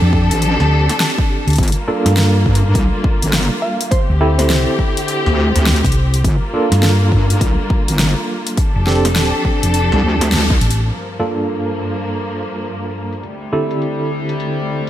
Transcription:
0.00 0.28 F2 medium
0.00 1.56 F3 medium
0.00 1.57 C4 loud
0.00 1.56 D4 medium
0.00 1.57 D4 medium
0.00 1.56 G4 medium
0.00 1.57 G4 medium
0.00 1.56 A4 medium
0.00 1.57 A4 loud
0.13 kick medium
0.31 0.57 A1 medium
0.31 closed hi-hat medium
0.42 closed hi-hat medium
0.60 0.87 D2 medium
0.60 snare soft
0.89 snare medium
0.89 closed hi-hat medium
1.00 snare loud
1.00 closed hi-hat medium
1.18 kick loud
1.47 1.57 D2 loud
1.47 closed hi-hat soft
1.50 closed hi-hat soft
1.53 closed hi-hat soft
1.56 closed hi-hat soft
1.58 1.74 G1 loud
1.58 3.89 G3 medium
1.58 3.89 A#3 medium
1.58 3.89 F4 medium
1.58 kick loud
1.58 closed hi-hat soft
1.63 closed hi-hat soft
1.68 closed hi-hat medium
1.72 closed hi-hat medium
1.88 3.90 A#3 loud
1.88 3.90 D4 medium
1.88 3.90 F4 medium
1.88 3.90 A4 loud
2.06 2.44 G2 loud
2.06 snare medium
2.06 closed hi-hat medium
2.17 snare loud
2.17 closed hi-hat medium
2.46 2.73 G2 loud
2.46 kick medium
2.55 closed hi-hat medium
2.75 2.90 C2 medium
2.75 kick loud
2.75 closed hi-hat medium
3.04 kick loud
3.22 3.49 G1 medium
3.22 closed hi-hat medium
3.33 snare loud
3.33 closed hi-hat medium
3.62 3.88 F5 medium
3.81 closed hi-hat medium
3.91 6.22 D3 medium
3.91 6.22 C4 medium
3.91 6.22 G4 medium
3.91 4.06 C5 medium
3.91 kick loud
3.91 closed hi-hat soft
4.10 4.65 D2 loud
4.21 6.23 C4 loud
4.21 6.23 E4 medium
4.21 6.23 G4 medium
4.21 6.23 A4 loud
4.39 4.79 C5 medium
4.39 snare medium
4.39 closed hi-hat medium
4.50 snare loud
4.50 closed hi-hat soft
4.79 kick medium
4.97 closed hi-hat medium
5.08 closed hi-hat soft
5.26 5.53 D2 loud
5.26 snare soft
5.56 5.82 D2 medium
5.56 snare medium
5.56 closed hi-hat medium
5.67 snare loud
5.67 closed hi-hat soft
5.73 closed hi-hat soft
5.76 closed hi-hat soft
5.84 6.23 C2 loud
5.84 kick loud
5.84 closed hi-hat soft
5.92 closed hi-hat soft
6.14 closed hi-hat medium
6.24 6.40 G1 loud
6.24 8.55 G3 medium
6.24 8.55 A#3 medium
6.24 8.55 F4 medium
6.24 kick loud
6.24 closed hi-hat medium
6.54 8.56 A#3 loud
6.54 8.56 D4 medium
6.54 8.56 F4 medium
6.54 8.56 A4 loud
6.72 7.10 G2 loud
6.72 snare medium
6.72 closed hi-hat medium
6.83 snare loud
6.83 closed hi-hat medium
7.12 7.39 G2 loud
7.12 kick medium
7.30 closed hi-hat medium
7.41 7.56 C2 medium
7.41 kick loud
7.41 closed hi-hat medium
7.70 kick loud
7.88 8.15 G1 medium
7.88 closed hi-hat medium
7.99 snare loud
7.99 closed hi-hat medium
8.47 closed hi-hat medium
8.57 10.88 F3 medium
8.57 10.88 D4 medium
8.57 10.88 G4 medium
8.57 10.88 A4 medium
8.57 kick loud
8.57 closed hi-hat medium
8.76 9.31 F1 loud
8.87 10.89 C4 loud
8.87 10.89 D4 medium
8.87 10.89 G4 loud
8.87 10.89 A4 loud
8.87 snare medium
9.05 snare medium
9.05 closed hi-hat medium
9.16 snare loud
9.16 closed hi-hat medium
9.45 kick medium
9.63 9.89 F1 medium
9.63 closed hi-hat medium
9.74 closed hi-hat medium
9.92 10.02 C2 loud
9.92 snare soft
10.03 10.60 D2 loud
10.21 snare medium
10.21 closed hi-hat medium
10.32 snare loud
10.32 closed hi-hat medium
10.50 kick loud
10.61 10.89 A1 loud
10.61 closed hi-hat medium
10.71 closed hi-hat medium
10.90 13.21 G2 medium
10.90 13.21 F3 medium
10.90 13.21 A#3 medium
11.20 13.22 G2 medium
11.20 13.22 A#3 medium
11.20 13.22 D4 medium
11.20 13.22 F4 medium
11.20 13.22 A4 loud
11.96 closed hi-hat medium
12.54 closed hi-hat soft
12.62 closed hi-hat soft
12.65 closed hi-hat medium
13.13 closed hi-hat medium
13.23 14.90 D2 medium
13.23 14.90 C3 medium
13.23 14.90 G3 medium
13.23 closed hi-hat soft
13.53 14.90 D3 medium
13.53 14.90 C4 medium
13.53 14.90 E4 medium
13.53 14.90 G4 medium
13.53 14.90 A4 loud
13.71 closed hi-hat medium
13.82 closed hi-hat medium
14.29 closed hi-hat medium
14.40 closed hi-hat medium

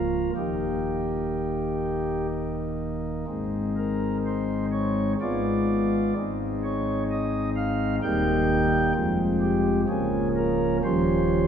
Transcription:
0.00 0.31 C#1 medium
0.00 0.30 C#2 medium
0.00 0.30 F3 medium
0.00 0.30 A#3 medium
0.00 0.30 F4 medium
0.00 0.33 A#4 loud
0.36 3.25 D#1 soft
0.36 3.25 D#2 medium
0.36 3.25 A#3 soft
0.36 3.25 D#4 soft
0.36 2.27 G4 medium
3.27 5.15 G#1 medium
3.27 5.15 G#2 medium
3.27 5.15 G#3 soft
3.27 5.15 C4 soft
3.27 5.15 D#4 soft
3.77 4.17 A#4 medium
4.26 4.66 C5 medium
4.72 5.13 C#5 medium
5.21 6.13 G#1 medium
5.21 6.13 G#2 medium
5.21 6.13 G#3 soft
5.21 6.13 B3 medium
5.21 6.13 F4 medium
5.21 6.13 D5 medium
6.17 7.99 G#1 medium
6.17 7.99 G#2 medium
6.17 7.99 G#3 soft
6.17 7.99 C4 soft
6.17 7.99 D#4 soft
6.64 7.03 C#5 medium
7.11 7.50 D#5 medium
7.57 7.96 F5 loud
8.02 8.93 D#1 medium
8.02 8.93 D#2 medium
8.02 8.92 G3 medium
8.02 8.93 A#3 medium
8.02 8.92 D#4 medium
8.02 8.92 G5 loud
8.95 9.85 F1 medium
8.95 9.85 F2 medium
8.95 9.85 F3 medium
8.95 9.85 G#3 medium
8.95 9.85 C4 soft
9.41 9.81 G4 medium
9.88 10.81 C#1 medium
9.88 10.81 C#2 medium
9.88 10.81 F3 medium
9.88 10.81 A#3 medium
9.88 10.81 C#4 medium
9.88 10.28 G#4 medium
10.36 10.77 A#4 loud
10.83 11.47 D#1 medium
10.83 11.47 D#2 medium
10.83 11.47 F3 medium
10.83 11.47 G3 medium
10.83 11.47 C#4 medium
10.83 11.47 C5 loud

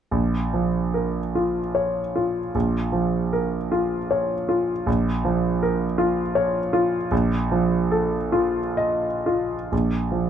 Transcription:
0.11 2.51 A#1 soft
0.53 1.18 F3 soft
0.94 1.58 A#4 soft
1.35 1.99 F4 soft
1.75 2.39 C#5 soft
2.16 2.79 F4 soft
2.55 4.83 A#1 soft
2.92 3.56 F3 soft
3.33 3.96 A#4 soft
3.72 4.34 F4 soft
4.11 4.72 C#5 soft
4.49 4.87 F4 soft
4.86 7.08 A#1 soft
5.25 5.83 F3 soft
5.63 6.21 A#4 soft
5.98 6.58 F4 soft
6.35 6.96 C#5 soft
6.73 7.12 F4 soft
7.11 9.68 A#1 soft
7.51 8.17 F3 soft
7.91 8.60 A4 soft
8.32 9.07 F4 soft
8.77 9.55 D#5 soft
9.26 9.72 F4 soft
9.72 10.30 A#1 soft
10.12 10.30 F3 soft

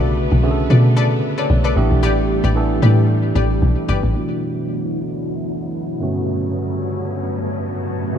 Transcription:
0.00 0.29 B1 loud
0.00 0.29 C#3 medium
0.00 0.28 D3 loud
0.00 0.29 A3 medium
0.00 4.11 A3 medium
0.00 0.29 B3 medium
0.00 1.72 B3 medium
0.00 0.32 F#4 loud
0.00 0.40 A4 loud
0.00 0.40 B4 medium
0.00 0.40 D5 loud
0.32 0.68 B1 loud
0.43 1.29 D3 medium
0.43 1.29 A3 medium
0.43 1.29 B3 medium
0.43 1.29 C#4 medium
0.43 0.51 G#4 medium
0.51 1.27 A4 loud
0.70 1.20 B2 loud
0.70 0.80 A4 medium
0.70 0.80 B4 medium
0.70 0.80 D5 medium
0.96 1.06 A4 loud
0.96 1.07 B4 medium
0.96 1.07 D5 loud
1.38 1.46 A4 medium
1.38 1.50 A4 medium
1.38 1.46 B4 medium
1.38 1.49 C#5 medium
1.38 1.46 D5 medium
1.50 1.75 B1 loud
1.50 1.63 B4 medium
1.50 1.64 D5 medium
1.64 1.72 A4 medium
1.64 1.72 B4 medium
1.64 1.90 B4 medium
1.64 1.73 D5 medium
1.76 1.90 A1 loud
1.76 2.41 E3 loud
1.76 4.13 G3 medium
1.76 2.41 A3 medium
1.76 2.41 B3 medium
1.76 2.41 D4 medium
1.76 2.42 G4 loud
1.91 2.04 B1 medium
2.03 2.41 A1 loud
2.03 2.40 G4 loud
2.03 2.41 B4 medium
2.03 2.41 D5 loud
2.44 2.80 A1 loud
2.44 2.80 G4 medium
2.44 2.80 B4 medium
2.44 2.80 D5 medium
2.55 3.41 E3 medium
2.55 3.41 A3 medium
2.55 3.42 B3 medium
2.55 3.42 D4 medium
2.55 3.42 A4 loud
2.82 3.32 A2 medium
2.82 3.07 G4 medium
2.82 3.07 B4 medium
2.82 3.07 D5 medium
3.35 3.61 A1 loud
3.35 3.45 G4 medium
3.35 3.46 B4 medium
3.35 3.46 D5 medium
3.62 3.76 B1 loud
3.88 4.02 G1 medium
3.88 3.98 G4 medium
3.88 3.99 B4 medium
3.88 3.99 D5 medium
4.03 4.15 A1 loud
4.14 5.99 D2 medium
4.14 5.99 B2 medium
4.14 5.97 E3 medium
4.14 8.18 F#3 medium
4.14 5.97 A3 medium
4.14 5.98 B3 medium
4.14 5.98 D4 medium
4.14 5.99 E4 medium
4.14 5.98 F#4 medium
6.00 8.09 G2 medium
6.00 8.12 G2 medium
6.00 8.09 D3 medium
6.00 8.09 A3 medium
6.00 8.18 A3 medium
6.00 8.12 B3 medium
6.00 8.10 B3 medium
6.00 8.12 C#4 medium
6.00 8.10 C#4 medium
6.00 8.11 F#4 medium
8.12 8.18 B2 medium
8.12 8.18 C#3 medium
8.12 8.18 D3 medium
8.12 8.18 A3 medium
8.12 8.18 B3 medium
8.12 8.18 C#4 medium

